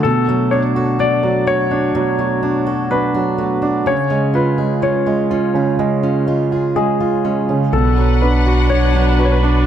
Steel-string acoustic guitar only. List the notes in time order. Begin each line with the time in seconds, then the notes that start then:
Already playing: F#3 A3 D4 F#4
0.05 B2
0.29 A3
0.52 D4
0.76 A4
0.99 F#3
1.23 D4
1.47 A3
1.71 D4
1.95 B2
2.19 A3
2.43 D4
2.67 A4
2.91 F#3
3.15 D4
3.38 A3
3.62 D4
3.86 C#3
4.10 C#4
4.34 F4
4.58 G#4
4.82 G#3
5.06 F4
5.31 C#4
5.55 F4
5.79 C#3
6.03 C#4
6.28 F4
6.52 G#4
6.76 G#3
7.00 F4
7.25 C#4
7.49 F4
7.73 B2
7.97 B3
8.21 D4
8.45 F#4
8.70 F#3
8.95 D4
9.19 B3
9.44 D4